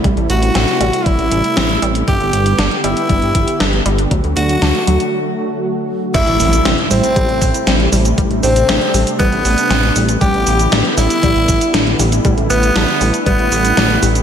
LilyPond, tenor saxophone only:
\new Staff \with { instrumentName = "Tenor saxophone" } { \time 4/4 \key a \dorian \tempo 4 = 118 r8 fis'4. e'2 | g'4. e'2 r8 | r8 fis'4. r2 | e'4. c'2 r8 |
r8 c'4. b2 | g'4. e'2 r8 | r8 b4. b2 | }